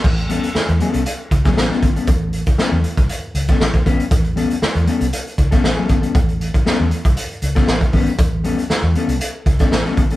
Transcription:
<<
  \new Staff \with { instrumentName = "Clean electric guitar" } { \time 4/4 \key a \mixolydian \tempo 4 = 118 r8 <g b cis' a'>16 r8. <g b cis' a'>8 r8. <g b cis' a'>8 <g b cis' a'>16 r16 <g b cis' a'>16 | r4 <g b cis' a'>16 r4. <g b cis' a'>16 r8 <g b cis' b'>16 r16 | r8 <g b cis' a'>16 r8. <g b cis' a'>16 r4 <g b cis' a'>16 r16 <g b cis' a'>8 <g b cis' a'>16 | r4 <g b cis' a'>16 r4. <g b cis' a'>16 r8 <g b cis' b'>16 r16 |
r8 <g b cis' a'>16 r8. <g b cis' a'>16 r4 <g b cis' a'>16 r16 <g b cis' a'>16 r16 <g b cis' a'>16 | }
  \new Staff \with { instrumentName = "Fingered electric bass" } { \clef bass \time 4/4 \key a \mixolydian a,,8. r8 e,16 r16 c,16 r8 cis,8 a,,16 r16 gis,,16 r16 | a,,8. r8 e,16 r16 c,16 r8 cis,8 a,,16 r16 gis,,16 r16 | a,,8. r8 e,16 r16 c,16 r8 cis,8 a,,16 r16 gis,,16 r16 | a,,8. r8 e,16 r16 c,16 r8 cis,8 a,,16 r16 gis,,16 r16 |
a,,8. r8 e,16 r16 c,16 r8 cis,8 a,,16 r16 gis,,16 r16 | }
  \new DrumStaff \with { instrumentName = "Drums" } \drummode { \time 4/4 <cymc bd>16 hh16 hh16 hh16 sn16 hh16 hh16 hh16 hh8 <hh bd>16 <hh bd sn>16 sn16 sn16 <hh bd>16 hh16 | <hh bd>8 hh16 <hh bd>16 sn8 hh16 <hh bd>16 hh8 hh16 <hh bd sn>16 sn16 <hh bd>16 <hh bd>16 hh16 | <hh bd>16 hh16 hh16 hh16 sn16 hh16 hh16 hh16 hh16 hh16 <hh bd>16 <hh bd sn>16 sn8 <hh bd>16 hh16 | <hh bd>16 hh16 hh16 <hh bd>16 sn8 hh16 <hh bd>16 hh16 hh16 hh16 <hh bd sn>16 sn16 <hh bd>16 <hho bd>16 hh16 |
<hh bd>8 hh16 hh16 sn8 hh16 hh16 hh8 <hh bd>16 <hh bd sn>16 sn16 sn16 <hh bd>16 hh16 | }
>>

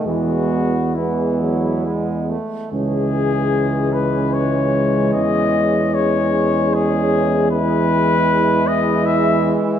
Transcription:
<<
  \new Staff \with { instrumentName = "Cornet" } { \time 3/4 \key e \major \tempo 4 = 75 fis'4 e'4. r8 | \key cis \minor gis'4. b'8 cis''4 | dis''4 cis''4 gis'4 | b'4. dis''8 e''8 r8 | }
  \new Staff \with { instrumentName = "French horn section" } { \time 3/4 \key e \major b4 b4. r8 | \key cis \minor cis'2.~ | cis'2. | e'2. | }
  \new Staff \with { instrumentName = "Euphonium" } { \clef bass \time 3/4 \key e \major gis4 gis4. r8 | \key cis \minor gis2.~ | gis2. | gis2. | }
  \new Staff \with { instrumentName = "Trombone" } { \clef bass \time 3/4 \key e \major e4 e8 fis8 gis8 a8 | \key cis \minor e2.~ | e2. | e2. | }
  \new Staff \with { instrumentName = "Tuba" } { \clef bass \time 3/4 \key e \major e,2~ e,8 r8 | \key cis \minor cis,2. | e,2.~ | e,2~ e,8 r8 | }
>>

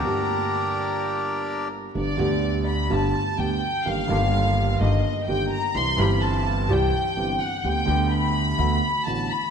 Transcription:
<<
  \new Staff \with { instrumentName = "Violin section" } { \time 4/4 \key g \minor \tempo 4 = 126 bes''2.~ bes''8 r8 | \key g \major d''4. b''8 a''4 g''4 | f''2 ees''4 g''8 bes''8 | c'''8 b''8 a''4 g''4. fis''8 |
g''4 b''2 a''8 b''8 | }
  \new Staff \with { instrumentName = "Bandoneon" } { \time 4/4 \key g \minor <d' g' bes'>2.~ <d' g' bes'>8 r8 | \key g \major r1 | r1 | r1 |
r1 | }
  \new Staff \with { instrumentName = "Grand piano" } { \clef bass \time 4/4 \key g \minor <g,, g, d g bes g'>1 | \key g \major <g,, g, d g b g'>8 <d, d g b g'>4. <g,, g, d g b g'>8 r8 <d, d g b g'>8 r8 | <g,, g, ees g bes g'>8 <g,, g, ees g bes g'>4. <g,, g, ees g bes g'>8 r8 <g,, g, ees g bes g'>8 r8 | <c, c e g c' g'>8 <g,, g, e g c' g'>4. <c, c e g c' g'>8 r8 <g,, g, e g c' g'>8 r8 |
<d, d g b g'>8 <d, d g b g'>4. <d, d a b fis'>8 r8 <a,, a, d a b fis'>8 r8 | }
  \new Staff \with { instrumentName = "Upright bass" } { \clef bass \time 4/4 \key g \minor r1 | \key g \major g,,8 d,4. g,,8 r8 d,8 r8 | g,,8 g,,4. g,,8 r8 g,,8 r8 | c,8 g,,4. c,8 r8 g,,8 r8 |
d,8 d,4. d,8 r8 a,,8 r8 | }
>>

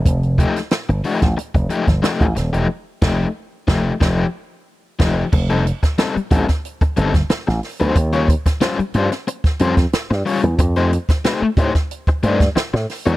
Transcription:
<<
  \new Staff \with { instrumentName = "Overdriven electric guitar" } { \time 4/4 \key f \major \tempo 4 = 91 r8 <f a ees' g'>16 r8. <f a ees' g'>16 r8. <f a ees' g'>16 r16 <f a ees' g'>16 r8 <f a ees' g'>16 | r8 <f a ees' g'>8 r8 <f a ees' g'>8 <f a ees' g'>8 r4 <f a ees' g'>8 | r16 <g c' ees' a'>16 r8 <g c' ees' a'>16 r16 <g c' ees' a'>16 r8. <g c' ees' a'>16 r4 <g c' ees' c''>16 | r16 <g des' f' des''>16 r8 <g des' f' c''>16 r16 <g des' f' c''>16 r8. <g des' f' c''>16 r8. <g des' f' des''>16 r16 |
r16 <a ees' g' c''>16 r8 <a ees' g' c''>16 r16 <a ees' g' c''>16 r8. <a ees' g' c''>16 r4 <a ees' g' d''>16 | }
  \new Staff \with { instrumentName = "Slap bass" } { \clef bass \time 4/4 \key f \major f,,8. r8 g,,16 r16 a,,16 r16 f,,16 r16 g,,16 r16 a,,16 ees,,16 e,,16 | r8 f,,8 r8 f,,8 f,,8 r4 f,,8 | f,,8. r8. a,,16 r8. g,,8 r16 a,,16 r16 d,16 | ees,8. r8. g,16 r8. f,8 r16 g,16 r16 e,16 |
f,8. r8. a,16 r8. g,8 r16 a,16 r16 e,16 | }
  \new DrumStaff \with { instrumentName = "Drums" } \drummode { \time 4/4 <hh bd>16 hh16 <hh bd>16 <hh sn>16 <hh sn>16 hh16 hho16 <hh bd sn>16 hh16 <hh bd>16 hh16 <hh bd sn>16 <hh sn>16 <hh bd>16 <hh sn>16 hh16 | r8 <cymc bd sn>8 r8 <bd sn>8 <bd sn>4 r8 <cymc bd sn>8 | <cymc bd>16 hh16 hh16 <hh bd sn>16 <hh sn>16 hh16 <hh bd>16 <hh bd sn>16 hh16 <hh bd>16 hh16 <hh bd sn>16 <hh sn>16 <hh sn>16 <hho sn>16 hh16 | <hh bd>16 hh16 <hh bd>16 <hh bd sn>16 <hh sn>16 hh16 hh16 <hh sn>16 hh16 <hh bd sn>16 hh16 <hh bd sn>16 <hh sn>16 sn16 hho16 hh16 |
<hh bd>16 hh16 hh16 <hh bd sn>16 <hh sn>8 <hh bd>16 <hh bd sn>16 hh16 <hh bd>16 hh16 <hh bd sn>16 <hh sn>16 sn16 <hho sn>16 hh16 | }
>>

